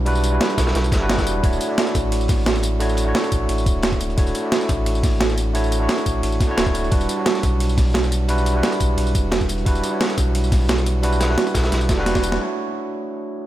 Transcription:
Already playing: sub bass B1, tine electric piano G3 D4 E4 F#4 B4 C#5
0.05 tine electric piano G3 D4 E4 F#4 B4, closed hi-hat, open hi-hat
0.15 tambourine
0.24 closed hi-hat, tambourine
0.30 tine electric piano G3 D4 E4 F#4 B4
0.41 snare, closed hi-hat
0.50 snare, tambourine
0.58 sub bass B1, kick, snare, closed hi-hat, tambourine
0.67 snare, closed hi-hat
0.75 sub bass B1, snare, closed hi-hat
0.84 tambourine
0.92 sub bass G1, kick, snare, closed hi-hat, tambourine
0.99 tine electric piano G3 D4 E4 F#4 B4
1.09 snare, closed hi-hat
1.18 kick, snare, closed hi-hat, tambourine
1.27 sub bass E1, closed hi-hat, tambourine
1.43 sub bass D1, tine electric piano A3 D4 E4 F#4 C#5, kick, closed hi-hat, ride
1.53 closed hi-hat, tambourine
1.60 closed hi-hat, ride, tambourine
1.68 tine electric piano A3 D4 E4 F#4
1.72 tine electric piano D5
1.78 snare, closed hi-hat, ride
1.87 snare, tambourine
1.95 sub bass A1, kick, snare, closed hi-hat, ride, tambourine
2.12 closed hi-hat, ride
2.21 tambourine
2.28 kick, snare, closed hi-hat, open hi-hat, ride, tambourine
2.46 snare, closed hi-hat, ride
2.55 tambourine
2.63 closed hi-hat, ride, tambourine
2.80 tine electric piano A3 D4 E4 F#4 C#5, closed hi-hat, ride
2.89 tambourine
2.97 closed hi-hat, ride, tambourine
3.05 tine electric piano A3 D4 E4 F#4 C#5
3.15 snare, closed hi-hat, ride
3.24 snare, tambourine
3.32 sub bass A1, kick, closed hi-hat, ride, tambourine
3.49 sub bass A1, closed hi-hat, ride
3.58 tambourine
3.66 sub bass D1, kick, closed hi-hat, ride, tambourine
3.83 snare, closed hi-hat, ride
3.92 kick, tambourine
4.01 closed hi-hat, ride, tambourine
4.10 closed hi-hat
4.17 sub bass D1, tine electric piano A3 D4 E4 F#4 C#5, kick, closed hi-hat, ride
4.27 closed hi-hat, tambourine
4.35 closed hi-hat, ride, tambourine
4.42 tine electric piano A3 D4 E4 F#4 D5
4.52 snare, closed hi-hat, ride
4.61 snare, tambourine
4.69 sub bass A1, kick, snare, closed hi-hat, ride, tambourine
4.86 closed hi-hat, ride
4.95 tambourine
5.03 kick, snare, closed hi-hat, open hi-hat, ride, tambourine
5.20 snare, closed hi-hat, ride
5.29 tambourine
5.38 closed hi-hat, ride, tambourine
5.54 tine electric piano A3 D4 E4 F#4 C#5, closed hi-hat, ride
5.64 tambourine
5.72 closed hi-hat, ride, tambourine
5.79 tine electric piano A3 D4 E4 F#4
5.83 tine electric piano C#5
5.89 snare, closed hi-hat, ride
5.98 snare, tambourine
6.06 sub bass A1, kick, closed hi-hat, ride, tambourine
6.23 sub bass A1, closed hi-hat, ride
6.32 tambourine
6.41 kick, snare, closed hi-hat, ride, tambourine
6.47 tine electric piano A3 D4 E4 F#4 C#5
6.57 sub bass D1, snare, closed hi-hat, ride
6.66 kick, tambourine
6.75 closed hi-hat, ride, tambourine
6.84 closed hi-hat
6.91 sub bass E1, tine electric piano G3 D4 E4 F#4 B4, kick, closed hi-hat, ride
7.01 closed hi-hat, tambourine
7.09 closed hi-hat, ride, tambourine
7.16 tine electric piano G3 D4 E4 F#4 C#5
7.26 snare, closed hi-hat, ride
7.35 snare, tambourine
7.43 sub bass B1, kick, snare, closed hi-hat, ride, tambourine
7.60 closed hi-hat, ride
7.69 tambourine
7.78 kick, snare, closed hi-hat, open hi-hat, ride, tambourine
7.94 snare, closed hi-hat, ride
8.04 tambourine
8.12 closed hi-hat, ride, tambourine
8.28 tine electric piano G3 D4 E4 F#4 B4, closed hi-hat, ride
8.38 tambourine
8.46 closed hi-hat, ride, tambourine
8.53 tine electric piano G3 D4 E4 F#4 B4
8.63 snare, closed hi-hat, ride
8.72 snare, tambourine
8.80 sub bass B1, kick, closed hi-hat, ride, tambourine
8.98 sub bass B1, closed hi-hat, ride
9.07 tambourine
9.15 sub bass E1, kick, closed hi-hat, ride, tambourine
9.32 snare, closed hi-hat, ride
9.41 kick, tambourine
9.49 closed hi-hat, ride, tambourine
9.58 closed hi-hat
9.65 sub bass E1, tine electric piano G3 D4 E4 F#4 B4, kick, closed hi-hat, ride
9.75 closed hi-hat, tambourine
9.84 closed hi-hat, ride, tambourine
9.90 tine electric piano G3 D4 E4 F#4 C#5
10.01 snare, closed hi-hat, ride
10.09 snare, tambourine
10.18 sub bass B1, kick, snare, closed hi-hat, ride, tambourine
10.35 closed hi-hat, ride
10.44 tambourine
10.52 kick, snare, closed hi-hat, open hi-hat, ride, tambourine
10.69 snare, closed hi-hat, ride
10.78 tambourine
10.86 closed hi-hat, ride, tambourine
11.02 tine electric piano G3 D4 E4 F#4 B4, closed hi-hat, ride
11.12 tambourine
11.21 snare, closed hi-hat, ride, tambourine
11.27 tine electric piano G3 D4 E4 F#4 B4, snare
11.38 snare, closed hi-hat, ride
11.47 snare, tambourine
11.55 sub bass B1, kick, snare, closed hi-hat, ride, tambourine
11.64 snare, closed hi-hat
11.72 sub bass B1, snare, closed hi-hat, ride
11.81 tambourine
11.89 sub bass E1, kick, snare, closed hi-hat, ride, tambourine
11.96 tine electric piano G3 D4 E4 F#4 B4, snare
12.06 snare, closed hi-hat, ride
12.15 kick, snare, tambourine
12.23 closed hi-hat, ride, tambourine
12.32 snare, closed hi-hat
12.39 tine electric piano A3 D4 E4 F#4 C#5

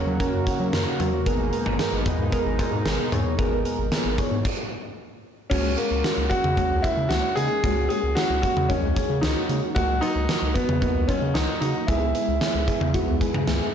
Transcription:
Already playing: analog synth pad C#3 F#3 A#3 F#4, synth keys C#4 F#4 A#4, grand piano F#5
0.07 analog synth bass F#3
0.20 synth keys C#4 F#4 A#4, kick, closed hi-hat
0.34 analog synth bass F#2
0.47 synth keys C#4 F#4 A#4, kick, closed hi-hat
0.60 analog synth bass F#3
0.73 analog synth bass F#2, synth keys C#4 F#4 A#4, snare, closed hi-hat
1.00 analog synth bass F#3, synth keys C#4 F#4 A#4, closed hi-hat, mid tom, cowbell
1.26 analog synth bass G#1, analog synth pad B2 G#3 D#4, synth keys B3 G#4 A#4, kick, closed hi-hat
1.39 analog synth bass G#1
1.53 synth keys B3 G#4 A#4, closed hi-hat
1.66 analog synth bass G#1, mid tom
1.79 synth keys B3 G#4 A#4, snare, closed hi-hat
1.93 analog synth bass G#1
2.06 synth keys B3 G#4 B4, kick, closed hi-hat, mid tom
2.19 analog synth bass G#2
2.32 synth keys B3 G#4 A#4, kick, closed hi-hat
2.46 analog synth bass G#1
2.59 synth keys B3 G#4 A#4, kick, closed hi-hat, cowbell
2.72 analog synth bass G#2
2.85 analog synth bass G#1, synth keys B3 G#4 A#4, snare, closed hi-hat
3.12 analog synth bass G#2, synth keys B3 G#4 C#5, closed hi-hat, mid tom, cowbell
3.38 analog synth bass G#1, synth keys B3 G#4 A#4, kick, closed hi-hat
3.52 analog synth bass G#1
3.65 synth keys B3 G#4 A#4, closed hi-hat
3.79 analog synth bass G#1
3.92 synth keys B3 G#4 A#4, snare, closed hi-hat
4.05 analog synth bass G#1
4.18 synth keys B3 G#4 C#5, kick, closed hi-hat
4.32 analog synth bass G#2
4.45 kick, crash
5.50 analog synth bass C#2, synth keys G#3 A#3 C#4 F#4, grand piano C#4, kick, crash
5.64 analog synth bass C#2
5.76 synth keys G#3 A#3 C#4 F#4, grand piano A#3, closed hi-hat
5.91 analog synth bass C#2
6.04 synth keys G#3 A#3 C#4 F#4, snare, closed hi-hat
6.17 analog synth bass C#2
6.30 synth keys G#3 A#3 C#4 F#4, grand piano F#4, kick, closed hi-hat
6.44 analog synth bass C#3, mid tom
6.57 synth keys G#3 A#3 C#4 F#4, kick, closed hi-hat, mid tom
6.71 analog synth bass C#2
6.82 synth keys G#3 A#3 C#4 E4, grand piano E4, kick, closed hi-hat
6.97 analog synth bass C#3
7.09 analog synth bass C#2, synth keys G#3 A#3 C#4 F#4, grand piano F#4, snare, closed hi-hat
7.35 analog synth bass C#3, synth keys G#3 A#3 C#4 D#4, grand piano G#4, closed hi-hat
7.64 analog synth bass C#2, synth keys G#3 A#3 C#4 F#4, kick, closed hi-hat
7.77 analog synth bass C#2
7.89 synth keys G#3 A#3 C#4 F#4, grand piano G#4, closed hi-hat
8.03 analog synth bass C#2
8.15 synth keys G#3 A#3 C#4 E4, grand piano F#4, snare, closed hi-hat
8.30 analog synth bass C#2
8.42 synth keys G#3 A#3 C#4 F#4, grand piano F#4, kick, closed hi-hat
8.57 analog synth bass C#3, mid tom
8.69 synth keys G#3 A#3 C#4 D#4, grand piano C#4, kick, closed hi-hat, mid tom
8.83 analog synth bass C#2
8.96 synth keys G#3 A#3 C#4 G#4, kick, closed hi-hat
9.10 analog synth bass C#3
9.21 analog synth bass C#2, synth keys G#3 A#3 C#4 F#4, grand piano D#4, snare, closed hi-hat
9.49 analog synth bass C#3, synth keys G#3 A#3 C#4 F#4, closed hi-hat
9.75 analog synth bass C#2, synth keys F#3 A#3 D#4 F#4, grand piano F#4, kick, closed hi-hat
9.89 analog synth bass C#2
10.01 synth keys F#3 A#3 D#4 F#4, grand piano D#4, closed hi-hat, cowbell
10.16 analog synth bass C#2
10.29 synth keys F#3 A#3 D#4 F#4, snare, closed hi-hat
10.42 analog synth bass C#2
10.54 synth keys F#3 A#3 D#4 F#4, grand piano B3, kick, closed hi-hat
10.69 analog synth bass C#3, mid tom
10.82 synth keys F#3 A#3 D#4 F#4, kick, closed hi-hat, mid tom
10.95 analog synth bass C#2
11.08 synth keys F#3 A#3 D#4 F#4, grand piano C#4, kick, closed hi-hat, cowbell
11.22 analog synth bass C#3
11.34 analog synth bass C#2, synth keys F#3 A#3 D#4 F#4, grand piano D#4, snare, closed hi-hat
11.61 analog synth bass C#3, synth keys F#3 A#3 D#4 F#4, grand piano D#4, closed hi-hat
11.87 analog synth bass C#2, synth keys G#3 B3 E4 G#4, grand piano E4, kick, closed hi-hat
12.01 analog synth bass C#2
12.15 synth keys G#3 B3 E4 G#4, closed hi-hat
12.28 analog synth bass C#2
12.41 synth keys G#3 B3 E4 G#4, snare, closed hi-hat
12.55 analog synth bass C#2
12.68 synth keys G#3 B3 E4 G#4, kick, closed hi-hat
12.81 analog synth bass C#3, mid tom
12.94 synth keys G#3 B3 E4 F#4, kick, closed hi-hat, mid tom
13.08 analog synth bass C#2
13.21 synth keys G#3 B3 E4 G#4, kick, closed hi-hat
13.34 analog synth bass C#3, mid tom
13.47 analog synth bass C#2, synth keys G#3 B3 E4 G#4, snare, closed hi-hat

